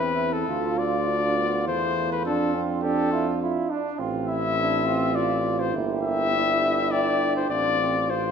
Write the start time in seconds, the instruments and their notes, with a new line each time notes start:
Already playing: tuba E2, french horn C4, euphonium E4, flugelhorn E4, trumpet B4
0.33 trumpet A4
0.48 tuba D2, flugelhorn F4, euphonium F4, french horn F4
0.78 trumpet D5
1.08 euphonium D4
1.38 euphonium B3
1.66 tuba E2, euphonium A3, french horn E4, trumpet C5
2.12 trumpet B4
2.25 tuba F2, french horn D4, euphonium D4, flugelhorn F4, trumpet A4
2.54 euphonium C4, french horn D4
2.82 euphonium D4, flugelhorn G4, trumpet A4
3.12 euphonium E4, flugelhorn F4
3.42 flugelhorn E4, euphonium F4
3.70 flugelhorn D4, euphonium D4
3.99 tuba A1, euphonium C4, french horn C4, flugelhorn F4
4.28 flugelhorn E4, trumpet E5
4.57 euphonium D4, flugelhorn E4
4.85 euphonium C4, flugelhorn F4
5.15 euphonium F4, trumpet D5
5.60 trumpet C5
5.73 tuba G1, french horn A#3, euphonium E4, flugelhorn G4
6.03 trumpet E5
6.33 french horn D4
6.91 flugelhorn G4, trumpet D5
7.36 trumpet C5
7.49 tuba A1, french horn C4, euphonium D4, flugelhorn F4, trumpet D5
7.80 euphonium C4
8.09 euphonium F4, french horn F4, flugelhorn F4, trumpet C5